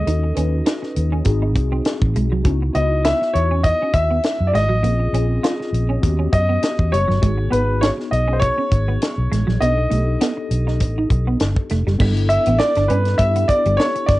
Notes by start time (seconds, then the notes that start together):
Already playing: D#5
0.05 D#2 C#4 D#4 F#4 A4, closed hi-hat
0.23 muted clean electric guitar stroke
0.34 D#2 C#4 D#4 F#4 B4, closed hi-hat
0.66 D#4, snare, closed hi-hat
0.82 muted clean electric guitar stroke, snare
0.96 D#2, closed hi-hat
1.12 C#4
1.24 G#1 C4 D#4 F#4 G#4, kick, closed hi-hat
1.42 D#4
1.56 C2, muted clean electric guitar stroke, kick, closed hi-hat
1.72 C4
1.85 muted clean electric guitar stroke, snare, closed hi-hat
2.02 A1, kick
2.15 B1 G#3, closed hi-hat
2.31 C2 F#3
2.43 C#2 B3 C#4 D#4 E4 F#4, kick, closed hi-hat
2.62 muted clean electric guitar stroke
2.72 C#2 B3 D#4 E4 F#4 D#5, closed hi-hat
3.05 E4 E5, snare, closed hi-hat
3.21 muted clean electric guitar stroke, snare
3.34 E2 C#5, closed hi-hat
3.51 C#4
3.64 D#5, kick, closed hi-hat
3.82 C#4
3.94 D#2 E5, muted clean electric guitar stroke, kick, closed hi-hat
4.11 B3
4.24 muted clean electric guitar stroke, snare, closed hi-hat
4.40 F#2
4.47 D5
4.53 G#1 G#3 D#5, snare, closed hi-hat
4.69 A1 F#3
4.82 A#1 A#3 C4 C#4 F4 G#4, closed hi-hat
5.00 muted clean electric guitar stroke
5.13 A#1 C4 C#4 F4 G#4, closed hi-hat
5.43 F4, snare, closed hi-hat
5.60 muted clean electric guitar stroke, snare
5.73 A#1, closed hi-hat
5.89 C#4
6.01 D#2 B3 C#4 F#4 G4, kick, closed hi-hat
6.19 C#4
6.33 F#2 D#5, muted clean electric guitar stroke, kick, closed hi-hat
6.49 B3
6.63 muted clean electric guitar stroke, snare, closed hi-hat
6.79 E2, kick
6.92 F#1 G3 C#5, closed hi-hat
7.08 G1 F#3, snare
7.21 G#1 G#3 B3 D#4 F#4 G#4, kick, closed hi-hat
7.38 muted clean electric guitar stroke
7.51 G#1 B3 D#4 F#4 G#4 B4, closed hi-hat
7.81 D#4 C#5, snare, closed hi-hat
7.97 muted clean electric guitar stroke, snare
8.11 B1 D#5, closed hi-hat
8.28 C#4
8.33 C5
8.39 C#5, kick, closed hi-hat
8.58 C#4
8.71 G#1, muted clean electric guitar stroke, kick, closed hi-hat
8.88 B3
9.02 muted clean electric guitar stroke, snare, closed hi-hat
9.18 B1
9.32 A1 G#3, snare, closed hi-hat
9.47 A#1 F#3, snare
9.60 B1 B3 D4 D#4 G4 A4 D#5, closed hi-hat
9.78 muted clean electric guitar stroke
9.89 B1 A3 B3 D#4 G4 A4, closed hi-hat
10.21 B3, snare, closed hi-hat
10.37 muted clean electric guitar stroke
10.51 B1, closed hi-hat
10.67 D#4, snare
10.80 A1, kick, closed hi-hat
10.98 D#4
11.10 B1, muted clean electric guitar stroke, kick, closed hi-hat
11.27 B3
11.40 G1, muted clean electric guitar stroke, snare, closed hi-hat
11.56 kick
11.69 F1 A3, snare, closed hi-hat
11.87 F#1 G3, snare
11.98 G1 G3 B3 D4 E4 A4, kick, crash
12.17 closed hi-hat
12.29 E5, muted clean electric guitar stroke, closed hi-hat
12.46 A1 B3, closed hi-hat
12.58 D5, muted clean electric guitar stroke, snare
12.75 G1 D4, snare, closed hi-hat
12.88 G2 C#4 B4, closed hi-hat
13.05 snare, closed hi-hat
13.18 G2 B3 D4 E4 G4 E5, kick, closed hi-hat
13.35 B3, closed hi-hat
13.48 D5, muted clean electric guitar stroke, kick, closed hi-hat
13.65 G1 G3, closed hi-hat
13.77 B3 C#5, snare
13.95 muted clean electric guitar stroke, closed hi-hat
14.06 G1 D5, kick, snare, closed hi-hat